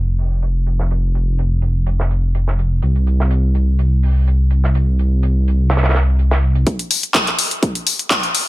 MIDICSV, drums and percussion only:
0, 0, Header, 1, 2, 480
1, 0, Start_track
1, 0, Tempo, 480000
1, 907, Time_signature, 4, 2, 24, 8
1, 8482, End_track
2, 0, Start_track
2, 0, Title_t, "Drums"
2, 185, Note_on_c, 9, 46, 69
2, 285, Note_off_c, 9, 46, 0
2, 426, Note_on_c, 9, 42, 76
2, 526, Note_off_c, 9, 42, 0
2, 666, Note_on_c, 9, 42, 64
2, 766, Note_off_c, 9, 42, 0
2, 794, Note_on_c, 9, 38, 33
2, 894, Note_off_c, 9, 38, 0
2, 909, Note_on_c, 9, 42, 75
2, 1009, Note_off_c, 9, 42, 0
2, 1150, Note_on_c, 9, 42, 59
2, 1250, Note_off_c, 9, 42, 0
2, 1387, Note_on_c, 9, 42, 75
2, 1487, Note_off_c, 9, 42, 0
2, 1620, Note_on_c, 9, 42, 62
2, 1720, Note_off_c, 9, 42, 0
2, 1864, Note_on_c, 9, 42, 81
2, 1964, Note_off_c, 9, 42, 0
2, 1996, Note_on_c, 9, 38, 44
2, 2096, Note_off_c, 9, 38, 0
2, 2108, Note_on_c, 9, 42, 61
2, 2208, Note_off_c, 9, 42, 0
2, 2347, Note_on_c, 9, 42, 76
2, 2447, Note_off_c, 9, 42, 0
2, 2476, Note_on_c, 9, 38, 36
2, 2576, Note_off_c, 9, 38, 0
2, 2589, Note_on_c, 9, 42, 66
2, 2689, Note_off_c, 9, 42, 0
2, 2823, Note_on_c, 9, 42, 80
2, 2923, Note_off_c, 9, 42, 0
2, 2956, Note_on_c, 9, 42, 45
2, 3056, Note_off_c, 9, 42, 0
2, 3069, Note_on_c, 9, 42, 63
2, 3169, Note_off_c, 9, 42, 0
2, 3201, Note_on_c, 9, 38, 37
2, 3301, Note_off_c, 9, 38, 0
2, 3306, Note_on_c, 9, 42, 87
2, 3406, Note_off_c, 9, 42, 0
2, 3548, Note_on_c, 9, 42, 67
2, 3648, Note_off_c, 9, 42, 0
2, 3788, Note_on_c, 9, 42, 75
2, 3888, Note_off_c, 9, 42, 0
2, 4032, Note_on_c, 9, 46, 76
2, 4132, Note_off_c, 9, 46, 0
2, 4275, Note_on_c, 9, 42, 80
2, 4375, Note_off_c, 9, 42, 0
2, 4506, Note_on_c, 9, 42, 60
2, 4605, Note_off_c, 9, 42, 0
2, 4637, Note_on_c, 9, 38, 33
2, 4737, Note_off_c, 9, 38, 0
2, 4750, Note_on_c, 9, 42, 82
2, 4850, Note_off_c, 9, 42, 0
2, 4992, Note_on_c, 9, 42, 60
2, 5092, Note_off_c, 9, 42, 0
2, 5230, Note_on_c, 9, 42, 78
2, 5330, Note_off_c, 9, 42, 0
2, 5478, Note_on_c, 9, 42, 67
2, 5578, Note_off_c, 9, 42, 0
2, 5698, Note_on_c, 9, 38, 83
2, 5713, Note_on_c, 9, 42, 59
2, 5770, Note_off_c, 9, 38, 0
2, 5770, Note_on_c, 9, 38, 78
2, 5772, Note_off_c, 9, 42, 0
2, 5772, Note_on_c, 9, 42, 67
2, 5831, Note_off_c, 9, 38, 0
2, 5831, Note_on_c, 9, 38, 85
2, 5836, Note_off_c, 9, 42, 0
2, 5836, Note_on_c, 9, 42, 59
2, 5891, Note_off_c, 9, 38, 0
2, 5891, Note_on_c, 9, 38, 86
2, 5892, Note_off_c, 9, 42, 0
2, 5892, Note_on_c, 9, 42, 66
2, 5942, Note_off_c, 9, 42, 0
2, 5942, Note_on_c, 9, 42, 73
2, 5944, Note_off_c, 9, 38, 0
2, 5944, Note_on_c, 9, 38, 96
2, 6041, Note_off_c, 9, 42, 0
2, 6044, Note_off_c, 9, 38, 0
2, 6190, Note_on_c, 9, 42, 59
2, 6290, Note_off_c, 9, 42, 0
2, 6313, Note_on_c, 9, 38, 105
2, 6314, Note_on_c, 9, 42, 78
2, 6413, Note_off_c, 9, 38, 0
2, 6414, Note_off_c, 9, 42, 0
2, 6552, Note_on_c, 9, 42, 61
2, 6652, Note_off_c, 9, 42, 0
2, 6666, Note_on_c, 9, 36, 113
2, 6666, Note_on_c, 9, 42, 65
2, 6766, Note_off_c, 9, 36, 0
2, 6766, Note_off_c, 9, 42, 0
2, 6794, Note_on_c, 9, 42, 40
2, 6893, Note_off_c, 9, 42, 0
2, 6907, Note_on_c, 9, 46, 101
2, 7007, Note_off_c, 9, 46, 0
2, 7033, Note_on_c, 9, 42, 39
2, 7133, Note_off_c, 9, 42, 0
2, 7144, Note_on_c, 9, 39, 118
2, 7146, Note_on_c, 9, 36, 113
2, 7146, Note_on_c, 9, 42, 64
2, 7244, Note_off_c, 9, 39, 0
2, 7246, Note_off_c, 9, 36, 0
2, 7246, Note_off_c, 9, 42, 0
2, 7271, Note_on_c, 9, 39, 36
2, 7273, Note_on_c, 9, 42, 38
2, 7371, Note_off_c, 9, 39, 0
2, 7373, Note_off_c, 9, 42, 0
2, 7386, Note_on_c, 9, 46, 96
2, 7486, Note_off_c, 9, 46, 0
2, 7513, Note_on_c, 9, 42, 40
2, 7613, Note_off_c, 9, 42, 0
2, 7626, Note_on_c, 9, 36, 112
2, 7626, Note_on_c, 9, 42, 63
2, 7726, Note_off_c, 9, 36, 0
2, 7726, Note_off_c, 9, 42, 0
2, 7754, Note_on_c, 9, 42, 40
2, 7853, Note_off_c, 9, 42, 0
2, 7866, Note_on_c, 9, 46, 103
2, 7966, Note_off_c, 9, 46, 0
2, 7993, Note_on_c, 9, 42, 39
2, 8093, Note_off_c, 9, 42, 0
2, 8105, Note_on_c, 9, 39, 120
2, 8106, Note_on_c, 9, 36, 112
2, 8107, Note_on_c, 9, 42, 65
2, 8206, Note_off_c, 9, 36, 0
2, 8206, Note_off_c, 9, 39, 0
2, 8207, Note_off_c, 9, 42, 0
2, 8234, Note_on_c, 9, 42, 40
2, 8334, Note_off_c, 9, 42, 0
2, 8346, Note_on_c, 9, 46, 98
2, 8446, Note_off_c, 9, 46, 0
2, 8482, End_track
0, 0, End_of_file